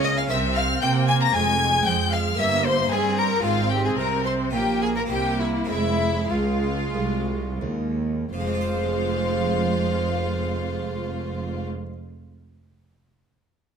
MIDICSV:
0, 0, Header, 1, 8, 480
1, 0, Start_track
1, 0, Key_signature, -4, "minor"
1, 0, Tempo, 525394
1, 1231, Time_signature, 4, 2, 24, 8
1, 3642, Tempo, 559701
1, 4602, Tempo, 601202
1, 5562, Tempo, 657174
1, 6522, Tempo, 710900
1, 7002, Tempo, 725514
1, 10598, End_track
2, 0, Start_track
2, 0, Title_t, "Violin section"
2, 0, Program_c, 0, 48
2, 31, Note_on_c, 0, 87, 112
2, 81, Note_off_c, 0, 87, 0
2, 161, Note_on_c, 0, 89, 96
2, 209, Note_off_c, 0, 89, 0
2, 272, Note_on_c, 0, 88, 112
2, 345, Note_off_c, 0, 88, 0
2, 507, Note_on_c, 0, 89, 115
2, 746, Note_off_c, 0, 89, 0
2, 747, Note_on_c, 0, 91, 121
2, 820, Note_off_c, 0, 91, 0
2, 982, Note_on_c, 0, 92, 102
2, 1104, Note_off_c, 0, 92, 0
2, 1117, Note_on_c, 0, 94, 119
2, 1231, Note_off_c, 0, 94, 0
2, 1231, Note_on_c, 0, 92, 121
2, 1698, Note_off_c, 0, 92, 0
2, 1712, Note_on_c, 0, 91, 109
2, 1946, Note_on_c, 0, 89, 106
2, 1950, Note_off_c, 0, 91, 0
2, 2185, Note_on_c, 0, 88, 112
2, 2186, Note_off_c, 0, 89, 0
2, 2426, Note_off_c, 0, 88, 0
2, 2426, Note_on_c, 0, 84, 113
2, 2660, Note_on_c, 0, 80, 112
2, 2662, Note_off_c, 0, 84, 0
2, 2905, Note_off_c, 0, 80, 0
2, 2907, Note_on_c, 0, 82, 109
2, 3145, Note_off_c, 0, 82, 0
2, 3157, Note_on_c, 0, 77, 115
2, 3394, Note_off_c, 0, 77, 0
2, 3399, Note_on_c, 0, 79, 102
2, 3521, Note_off_c, 0, 79, 0
2, 3525, Note_on_c, 0, 80, 78
2, 3573, Note_off_c, 0, 80, 0
2, 3646, Note_on_c, 0, 82, 94
2, 3715, Note_off_c, 0, 82, 0
2, 3876, Note_on_c, 0, 84, 94
2, 3944, Note_off_c, 0, 84, 0
2, 4113, Note_on_c, 0, 79, 97
2, 4350, Note_off_c, 0, 79, 0
2, 4354, Note_on_c, 0, 80, 104
2, 4403, Note_off_c, 0, 80, 0
2, 4486, Note_on_c, 0, 82, 88
2, 4534, Note_off_c, 0, 82, 0
2, 4606, Note_on_c, 0, 79, 100
2, 4834, Note_off_c, 0, 79, 0
2, 4839, Note_on_c, 0, 76, 88
2, 4903, Note_off_c, 0, 76, 0
2, 5075, Note_on_c, 0, 76, 105
2, 5554, Note_off_c, 0, 76, 0
2, 5565, Note_on_c, 0, 77, 81
2, 6523, Note_off_c, 0, 77, 0
2, 7000, Note_on_c, 0, 77, 98
2, 9198, Note_off_c, 0, 77, 0
2, 10598, End_track
3, 0, Start_track
3, 0, Title_t, "Violin"
3, 0, Program_c, 1, 40
3, 41, Note_on_c, 1, 75, 98
3, 162, Note_on_c, 1, 77, 99
3, 176, Note_off_c, 1, 75, 0
3, 270, Note_off_c, 1, 77, 0
3, 276, Note_on_c, 1, 76, 88
3, 349, Note_off_c, 1, 76, 0
3, 510, Note_on_c, 1, 77, 90
3, 584, Note_off_c, 1, 77, 0
3, 749, Note_on_c, 1, 79, 99
3, 822, Note_off_c, 1, 79, 0
3, 992, Note_on_c, 1, 80, 87
3, 1040, Note_off_c, 1, 80, 0
3, 1109, Note_on_c, 1, 82, 97
3, 1225, Note_on_c, 1, 80, 105
3, 1239, Note_off_c, 1, 82, 0
3, 1696, Note_off_c, 1, 80, 0
3, 1702, Note_on_c, 1, 79, 93
3, 1775, Note_off_c, 1, 79, 0
3, 1944, Note_on_c, 1, 77, 91
3, 2018, Note_off_c, 1, 77, 0
3, 2191, Note_on_c, 1, 76, 102
3, 2431, Note_on_c, 1, 72, 93
3, 2444, Note_off_c, 1, 76, 0
3, 2672, Note_on_c, 1, 68, 103
3, 2685, Note_off_c, 1, 72, 0
3, 2910, Note_on_c, 1, 70, 94
3, 2924, Note_off_c, 1, 68, 0
3, 3145, Note_on_c, 1, 65, 92
3, 3158, Note_off_c, 1, 70, 0
3, 3393, Note_off_c, 1, 65, 0
3, 3398, Note_on_c, 1, 67, 100
3, 3520, Note_on_c, 1, 68, 89
3, 3534, Note_off_c, 1, 67, 0
3, 3637, Note_off_c, 1, 68, 0
3, 3642, Note_on_c, 1, 70, 88
3, 3865, Note_off_c, 1, 70, 0
3, 3871, Note_on_c, 1, 72, 90
3, 3939, Note_off_c, 1, 72, 0
3, 4110, Note_on_c, 1, 67, 91
3, 4355, Note_on_c, 1, 68, 88
3, 4367, Note_off_c, 1, 67, 0
3, 4474, Note_off_c, 1, 68, 0
3, 4479, Note_on_c, 1, 70, 83
3, 4528, Note_off_c, 1, 70, 0
3, 4597, Note_on_c, 1, 67, 83
3, 4832, Note_on_c, 1, 64, 76
3, 4844, Note_off_c, 1, 67, 0
3, 5066, Note_off_c, 1, 64, 0
3, 5071, Note_on_c, 1, 64, 94
3, 5561, Note_on_c, 1, 65, 74
3, 5572, Note_off_c, 1, 64, 0
3, 6522, Note_off_c, 1, 65, 0
3, 7003, Note_on_c, 1, 72, 82
3, 9201, Note_off_c, 1, 72, 0
3, 10598, End_track
4, 0, Start_track
4, 0, Title_t, "Violin section"
4, 0, Program_c, 2, 48
4, 37, Note_on_c, 2, 75, 90
4, 159, Note_off_c, 2, 75, 0
4, 166, Note_on_c, 2, 77, 83
4, 213, Note_off_c, 2, 77, 0
4, 283, Note_on_c, 2, 76, 98
4, 516, Note_off_c, 2, 76, 0
4, 518, Note_on_c, 2, 77, 92
4, 753, Note_on_c, 2, 79, 100
4, 756, Note_off_c, 2, 77, 0
4, 987, Note_off_c, 2, 79, 0
4, 992, Note_on_c, 2, 80, 103
4, 1040, Note_off_c, 2, 80, 0
4, 1103, Note_on_c, 2, 82, 91
4, 1152, Note_off_c, 2, 82, 0
4, 1227, Note_on_c, 2, 80, 98
4, 1696, Note_off_c, 2, 80, 0
4, 1709, Note_on_c, 2, 79, 96
4, 1939, Note_on_c, 2, 77, 86
4, 1948, Note_off_c, 2, 79, 0
4, 2182, Note_off_c, 2, 77, 0
4, 2186, Note_on_c, 2, 76, 92
4, 2426, Note_off_c, 2, 76, 0
4, 2429, Note_on_c, 2, 72, 97
4, 2669, Note_off_c, 2, 72, 0
4, 2670, Note_on_c, 2, 68, 91
4, 2908, Note_on_c, 2, 70, 97
4, 2910, Note_off_c, 2, 68, 0
4, 3141, Note_on_c, 2, 65, 88
4, 3146, Note_off_c, 2, 70, 0
4, 3391, Note_off_c, 2, 65, 0
4, 3391, Note_on_c, 2, 67, 84
4, 3514, Note_on_c, 2, 68, 85
4, 3516, Note_off_c, 2, 67, 0
4, 3634, Note_on_c, 2, 70, 96
4, 3638, Note_off_c, 2, 68, 0
4, 3872, Note_off_c, 2, 70, 0
4, 3878, Note_on_c, 2, 72, 82
4, 4115, Note_off_c, 2, 72, 0
4, 4117, Note_on_c, 2, 67, 84
4, 4185, Note_off_c, 2, 67, 0
4, 4350, Note_on_c, 2, 68, 83
4, 4400, Note_off_c, 2, 68, 0
4, 4477, Note_on_c, 2, 70, 82
4, 4527, Note_off_c, 2, 70, 0
4, 4593, Note_on_c, 2, 67, 82
4, 4827, Note_off_c, 2, 67, 0
4, 4830, Note_on_c, 2, 64, 81
4, 5061, Note_off_c, 2, 64, 0
4, 5070, Note_on_c, 2, 64, 84
4, 5551, Note_off_c, 2, 64, 0
4, 5556, Note_on_c, 2, 65, 69
4, 6519, Note_off_c, 2, 65, 0
4, 6996, Note_on_c, 2, 65, 79
4, 9194, Note_off_c, 2, 65, 0
4, 10598, End_track
5, 0, Start_track
5, 0, Title_t, "Harpsichord"
5, 0, Program_c, 3, 6
5, 0, Note_on_c, 3, 49, 71
5, 0, Note_on_c, 3, 58, 62
5, 0, Note_on_c, 3, 61, 62
5, 0, Note_on_c, 3, 65, 60
5, 230, Note_off_c, 3, 58, 0
5, 237, Note_off_c, 3, 61, 0
5, 243, Note_off_c, 3, 49, 0
5, 244, Note_off_c, 3, 65, 0
5, 247, Note_on_c, 3, 60, 55
5, 259, Note_on_c, 3, 70, 61
5, 273, Note_on_c, 3, 48, 68
5, 716, Note_off_c, 3, 48, 0
5, 741, Note_off_c, 3, 60, 0
5, 752, Note_on_c, 3, 60, 88
5, 1188, Note_on_c, 3, 56, 62
5, 1191, Note_off_c, 3, 70, 0
5, 1192, Note_off_c, 3, 60, 0
5, 1201, Note_on_c, 3, 60, 58
5, 1215, Note_on_c, 3, 68, 63
5, 1230, Note_on_c, 3, 41, 64
5, 1671, Note_off_c, 3, 41, 0
5, 1707, Note_on_c, 3, 53, 78
5, 2136, Note_off_c, 3, 56, 0
5, 2143, Note_off_c, 3, 60, 0
5, 2143, Note_on_c, 3, 58, 63
5, 2150, Note_off_c, 3, 53, 0
5, 2150, Note_off_c, 3, 68, 0
5, 2158, Note_on_c, 3, 60, 58
5, 2169, Note_on_c, 3, 67, 57
5, 2184, Note_on_c, 3, 43, 63
5, 2629, Note_off_c, 3, 43, 0
5, 2666, Note_on_c, 3, 55, 83
5, 3100, Note_off_c, 3, 58, 0
5, 3107, Note_off_c, 3, 60, 0
5, 3110, Note_on_c, 3, 56, 58
5, 3113, Note_off_c, 3, 67, 0
5, 3114, Note_off_c, 3, 55, 0
5, 3123, Note_on_c, 3, 60, 61
5, 3135, Note_on_c, 3, 65, 60
5, 3149, Note_on_c, 3, 44, 65
5, 3605, Note_off_c, 3, 44, 0
5, 3641, Note_on_c, 3, 48, 69
5, 4066, Note_off_c, 3, 56, 0
5, 4072, Note_off_c, 3, 60, 0
5, 4078, Note_off_c, 3, 48, 0
5, 4078, Note_off_c, 3, 65, 0
5, 4086, Note_on_c, 3, 61, 51
5, 4099, Note_on_c, 3, 65, 56
5, 4113, Note_on_c, 3, 46, 57
5, 4559, Note_on_c, 3, 58, 72
5, 4568, Note_off_c, 3, 46, 0
5, 4571, Note_on_c, 3, 60, 68
5, 4574, Note_off_c, 3, 61, 0
5, 4580, Note_off_c, 3, 65, 0
5, 4586, Note_on_c, 3, 64, 69
5, 4596, Note_on_c, 3, 48, 70
5, 5031, Note_on_c, 3, 56, 54
5, 5033, Note_off_c, 3, 60, 0
5, 5039, Note_off_c, 3, 48, 0
5, 5039, Note_off_c, 3, 58, 0
5, 5043, Note_on_c, 3, 60, 53
5, 5052, Note_off_c, 3, 64, 0
5, 5069, Note_on_c, 3, 41, 55
5, 5526, Note_off_c, 3, 56, 0
5, 5528, Note_off_c, 3, 41, 0
5, 5532, Note_off_c, 3, 60, 0
5, 5556, Note_on_c, 3, 37, 64
5, 5998, Note_off_c, 3, 37, 0
5, 6027, Note_on_c, 3, 36, 61
5, 6491, Note_off_c, 3, 36, 0
5, 6516, Note_on_c, 3, 39, 72
5, 6972, Note_off_c, 3, 39, 0
5, 6999, Note_on_c, 3, 53, 61
5, 7045, Note_on_c, 3, 56, 57
5, 7091, Note_on_c, 3, 60, 66
5, 7137, Note_on_c, 3, 65, 63
5, 7184, Note_on_c, 3, 72, 59
5, 9197, Note_off_c, 3, 53, 0
5, 9243, Note_off_c, 3, 56, 0
5, 9289, Note_off_c, 3, 60, 0
5, 9335, Note_off_c, 3, 65, 0
5, 9382, Note_off_c, 3, 72, 0
5, 10598, End_track
6, 0, Start_track
6, 0, Title_t, "Viola section"
6, 0, Program_c, 4, 48
6, 0, Note_on_c, 4, 61, 90
6, 278, Note_off_c, 4, 61, 0
6, 281, Note_on_c, 4, 60, 84
6, 757, Note_off_c, 4, 60, 0
6, 758, Note_on_c, 4, 58, 91
6, 1232, Note_off_c, 4, 58, 0
6, 1232, Note_on_c, 4, 56, 96
6, 1454, Note_off_c, 4, 56, 0
6, 1465, Note_on_c, 4, 56, 81
6, 2171, Note_off_c, 4, 56, 0
6, 2184, Note_on_c, 4, 58, 78
6, 2656, Note_off_c, 4, 58, 0
6, 2660, Note_on_c, 4, 60, 84
6, 3136, Note_off_c, 4, 60, 0
6, 3147, Note_on_c, 4, 60, 90
6, 4093, Note_off_c, 4, 60, 0
6, 4112, Note_on_c, 4, 58, 80
6, 4592, Note_off_c, 4, 58, 0
6, 4601, Note_on_c, 4, 58, 78
6, 5064, Note_off_c, 4, 58, 0
6, 5069, Note_on_c, 4, 56, 85
6, 6815, Note_off_c, 4, 56, 0
6, 7002, Note_on_c, 4, 56, 81
6, 9200, Note_off_c, 4, 56, 0
6, 10598, End_track
7, 0, Start_track
7, 0, Title_t, "Cello section"
7, 0, Program_c, 5, 48
7, 0, Note_on_c, 5, 49, 90
7, 272, Note_off_c, 5, 49, 0
7, 282, Note_on_c, 5, 48, 90
7, 748, Note_off_c, 5, 48, 0
7, 757, Note_on_c, 5, 60, 85
7, 1222, Note_off_c, 5, 60, 0
7, 1232, Note_on_c, 5, 41, 94
7, 1698, Note_off_c, 5, 41, 0
7, 1706, Note_on_c, 5, 53, 82
7, 2182, Note_on_c, 5, 43, 89
7, 2186, Note_off_c, 5, 53, 0
7, 2655, Note_off_c, 5, 43, 0
7, 2665, Note_on_c, 5, 55, 81
7, 3141, Note_off_c, 5, 55, 0
7, 3148, Note_on_c, 5, 44, 88
7, 3631, Note_off_c, 5, 44, 0
7, 3643, Note_on_c, 5, 48, 75
7, 4105, Note_off_c, 5, 48, 0
7, 4112, Note_on_c, 5, 46, 83
7, 4602, Note_off_c, 5, 46, 0
7, 4602, Note_on_c, 5, 48, 74
7, 5064, Note_off_c, 5, 48, 0
7, 5077, Note_on_c, 5, 41, 72
7, 5554, Note_off_c, 5, 41, 0
7, 5565, Note_on_c, 5, 37, 79
7, 6022, Note_off_c, 5, 37, 0
7, 6030, Note_on_c, 5, 36, 73
7, 6512, Note_off_c, 5, 36, 0
7, 6523, Note_on_c, 5, 39, 73
7, 7001, Note_on_c, 5, 41, 81
7, 7002, Note_off_c, 5, 39, 0
7, 9199, Note_off_c, 5, 41, 0
7, 10598, End_track
8, 0, Start_track
8, 0, Title_t, "Double bass section"
8, 0, Program_c, 6, 48
8, 0, Note_on_c, 6, 37, 87
8, 272, Note_off_c, 6, 37, 0
8, 279, Note_on_c, 6, 36, 93
8, 746, Note_off_c, 6, 36, 0
8, 760, Note_on_c, 6, 48, 92
8, 1223, Note_off_c, 6, 48, 0
8, 1229, Note_on_c, 6, 29, 90
8, 1697, Note_off_c, 6, 29, 0
8, 1707, Note_on_c, 6, 41, 83
8, 2186, Note_on_c, 6, 31, 92
8, 2187, Note_off_c, 6, 41, 0
8, 2657, Note_off_c, 6, 31, 0
8, 2668, Note_on_c, 6, 43, 93
8, 3142, Note_off_c, 6, 43, 0
8, 3153, Note_on_c, 6, 32, 97
8, 3633, Note_off_c, 6, 32, 0
8, 3639, Note_on_c, 6, 36, 81
8, 4103, Note_off_c, 6, 36, 0
8, 4115, Note_on_c, 6, 34, 83
8, 4603, Note_off_c, 6, 34, 0
8, 4604, Note_on_c, 6, 36, 81
8, 5066, Note_off_c, 6, 36, 0
8, 5075, Note_on_c, 6, 29, 84
8, 5554, Note_off_c, 6, 29, 0
8, 5563, Note_on_c, 6, 37, 79
8, 6021, Note_off_c, 6, 37, 0
8, 6030, Note_on_c, 6, 36, 73
8, 6512, Note_off_c, 6, 36, 0
8, 6517, Note_on_c, 6, 39, 81
8, 7000, Note_off_c, 6, 39, 0
8, 7000, Note_on_c, 6, 29, 89
8, 9198, Note_off_c, 6, 29, 0
8, 10598, End_track
0, 0, End_of_file